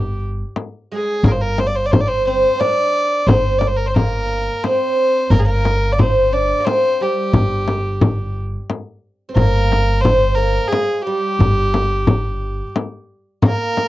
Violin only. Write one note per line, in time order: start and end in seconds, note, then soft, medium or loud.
0.00 0.22 G4 medium
0.94 1.29 G#4 medium
1.28 1.33 A#4 medium
1.32 1.43 C5 medium
1.41 1.61 A#4 medium
1.60 1.69 C5 medium
1.67 1.77 D5 medium
1.76 1.87 C5 medium
1.86 1.93 D5 medium
1.91 2.02 C5 medium
2.00 2.09 D5 medium
2.08 2.26 C5 loud
2.28 2.61 C5 medium
2.59 3.28 D5 loud
3.27 3.60 C5 loud
3.58 3.69 D5 medium
3.67 3.78 C5 medium
3.76 3.88 A#4 medium
3.86 3.96 C5 medium
3.94 4.65 A#4 medium
4.63 5.32 C5 medium
5.31 5.41 A#4 medium
5.39 5.47 G#4 medium
5.45 5.94 A#4 medium
5.92 6.01 D5 medium
6.00 6.34 C5 medium
6.33 6.66 D5 medium
6.65 7.03 C5 loud
7.02 8.37 G4 medium
9.36 10.02 A#4 loud
10.01 10.36 C5 medium
10.35 10.69 A#4 medium
10.68 11.03 G#4 medium
11.02 12.74 G4 medium
13.46 13.88 A#4 loud